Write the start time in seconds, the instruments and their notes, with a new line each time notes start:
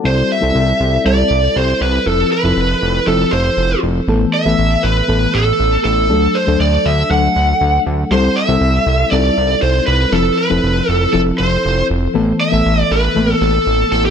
Already playing: fm electric piano F#4 D5
0.04 analog synth bass C2, fm electric piano G3 C4 E4 A4, lead electric guitar C5
0.32 lead electric guitar E5
0.41 analog synth bass C2, fm electric piano G3 C4 E4 A4
0.55 analog synth bass C2
0.80 analog synth bass C2
1.04 analog synth bass C2, fm electric piano G3 C4 E4 A4, lead electric guitar D5
1.31 analog synth bass C2
1.56 analog synth bass C2, lead electric guitar C5
1.81 analog synth bass C2, lead electric guitar B4
2.06 analog synth bass F1, fm electric piano F3 C4 E4 A4, lead electric guitar A4
2.32 lead electric guitar B4
2.43 analog synth bass F1, fm electric piano F3 C4 E4 A4
2.57 analog synth bass F1
2.82 analog synth bass F1
3.07 analog synth bass F1, fm electric piano F3 C4 E4 A4, lead electric guitar A4
3.32 analog synth bass F1, lead electric guitar C5
3.57 analog synth bass F1
3.83 analog synth bass F1
4.08 analog synth bass A1, fm electric piano E3 A3 B3 A4
4.34 lead electric guitar E5
4.45 analog synth bass A1, fm electric piano E3 A3 B3 A4
4.59 analog synth bass A1
4.83 analog synth bass A1, lead electric guitar B4
5.08 analog synth bass A1, fm electric piano E3 A3 B3 A4
5.34 analog synth bass A1, lead electric guitar A4
5.60 analog synth bass A1
5.84 analog synth bass A1, lead electric guitar A4
6.09 analog synth bass D2, fm electric piano F#3 A3 D4 A4
6.35 lead electric guitar C5
6.47 analog synth bass D2, fm electric piano F#3 A3 D4 A4
6.60 analog synth bass D2, lead electric guitar D5
6.86 analog synth bass D2, lead electric guitar E5
7.10 analog synth bass D2, fm electric piano F#3 A3 D4 A4, lead electric guitar F#5
7.36 analog synth bass D2
7.61 analog synth bass D2
7.87 analog synth bass D2
8.11 analog synth bass C2, fm electric piano G3 C4 E4 A4, lead electric guitar C5
8.36 lead electric guitar E5
8.48 analog synth bass C2, fm electric piano G3 C4 E4 A4
8.61 analog synth bass C2
8.86 analog synth bass C2
9.11 analog synth bass C2, fm electric piano G3 C4 D#4 A4, lead electric guitar D5
9.18 fm electric piano E4
9.38 analog synth bass C2
9.62 analog synth bass C2, lead electric guitar C5
9.86 analog synth bass C2, lead electric guitar B4
10.12 analog synth bass F1, fm electric piano F3 C4 E4 A4, lead electric guitar A4
10.38 lead electric guitar B4
10.49 analog synth bass F1, fm electric piano F3 C4 E4 A4
10.63 analog synth bass F1
10.89 analog synth bass F1, lead electric guitar A4
11.12 analog synth bass F1, fm electric piano F3 C4 E4 A4, lead electric guitar A4
11.38 analog synth bass F1, lead electric guitar C5
11.65 analog synth bass F1
11.90 analog synth bass F1
12.14 analog synth bass A1, fm electric piano E3 A3 B3 A4
12.40 lead electric guitar E5
12.51 analog synth bass A1, fm electric piano E3 A3 B3 A4
12.66 analog synth bass A1
12.91 analog synth bass A1, lead electric guitar B4
13.14 analog synth bass A1, fm electric piano E3 A3 A#3 A4
13.22 fm electric piano B3
13.41 analog synth bass A1, lead electric guitar A4
13.67 analog synth bass A1
13.92 analog synth bass A1, lead electric guitar A4
14.05 lead electric guitar G4